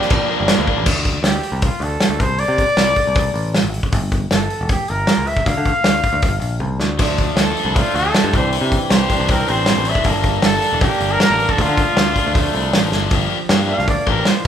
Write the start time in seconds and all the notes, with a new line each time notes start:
Already playing: A#3 D4 G4
0.02 snare
0.09 F3 G3 A#3 D4, kick, crash
0.29 F3 G3 A#3 D4
0.41 G1
0.48 F3 G3 A#3 D4, snare, crash
0.59 D2
0.67 F3 G3 A#3 D4, kick
0.77 A1
0.86 D2, kick, crash
0.95 D2
1.05 kick, open hi-hat
1.23 D2, snare, open hi-hat
1.27 G4
1.43 open hi-hat
1.52 C2
1.62 F4, kick, open hi-hat
1.80 D2 A4, open hi-hat
2.00 snare, open hi-hat
2.09 D2
2.20 C2 C5, kick, open hi-hat
2.39 D5, open hi-hat
2.48 C3
2.58 kick, open hi-hat
2.77 C2, snare, open hi-hat
2.96 kick, open hi-hat
3.07 C2
3.15 kick, open hi-hat
3.34 A1, open hi-hat
3.54 snare, open hi-hat
3.63 G#1
3.74 open hi-hat
3.83 kick
3.92 G1, kick, open hi-hat
4.02 G1
4.12 kick, open hi-hat
4.31 G1 A4, snare, open hi-hat
4.50 open hi-hat
4.61 E1
4.69 G4, kick, open hi-hat
4.88 G1 A#4, open hi-hat
5.07 snare, open hi-hat
5.18 C#2
5.27 E5, open hi-hat
5.37 kick
5.46 D2 F5, kick, open hi-hat
5.57 D3
5.65 kick, open hi-hat
5.84 D2, snare, open hi-hat
6.03 kick, open hi-hat
6.13 D2
6.22 G1, kick, open hi-hat
6.41 A#1, open hi-hat
6.60 C2, high tom
6.80 D2, snare
6.98 D2 F3 A3 D4, kick, open hi-hat, crash
7.07 D2
7.18 kick, open hi-hat
7.36 D2 A4, snare, open hi-hat
7.57 D4, open hi-hat
7.65 C2
7.75 F3 A3 D4 F4, kick, open hi-hat
7.94 D2 D4 A4, open hi-hat
8.14 F3, snare, open hi-hat
8.24 G2
8.32 C2 E3 C4 D4 G4 C5, kick, open hi-hat
8.53 E3, open hi-hat
8.61 C3
8.72 kick, open hi-hat
8.90 C2 G4 C5, snare, open hi-hat
9.08 E3 C4 D4 G4, kick, open hi-hat
9.20 C2
9.27 C4, kick, open hi-hat
9.31 A#4
9.47 A1 D4 C5, open hi-hat
9.66 E3, snare, open hi-hat
9.77 A1
9.85 D4 E5, open hi-hat
9.95 kick
10.04 G1 G3 A#3 D4, kick, open hi-hat
10.09 A4
10.14 G1
10.23 kick, open hi-hat
10.42 G1 A4, snare, open hi-hat
10.62 D4, open hi-hat
10.73 E1
10.80 G3 A#3 D4 G4 A4, kick, open hi-hat
11.00 G1 D4, open hi-hat
11.12 A#4
11.20 A#3 A#4, snare, open hi-hat
11.30 A1
11.39 D4, open hi-hat
11.49 A4, kick
11.56 D2 F3 A3 D4 A4, kick, open hi-hat
11.61 F4
11.68 D3
11.77 kick, open hi-hat
11.97 D2 A4, snare, open hi-hat
12.14 D4, kick, open hi-hat
12.27 D2
12.32 F3 A3 D4, kick, open hi-hat
12.36 A4
12.54 C2 D4, open hi-hat
12.73 A1 F3, snare, open hi-hat
12.92 G1 D4, snare
13.10 G1 F3 A#3 D4 G4, kick, open hi-hat
13.29 F3
13.49 G2 A#3 D4 G4, snare, open hi-hat
13.67 D4 F5
13.78 C2, snare
13.88 D2 A#3 D5, kick, open hi-hat
14.06 A1 F3 A#3 D4 G4 A#4, kick
14.25 F3 C5, snare, open hi-hat
14.44 F3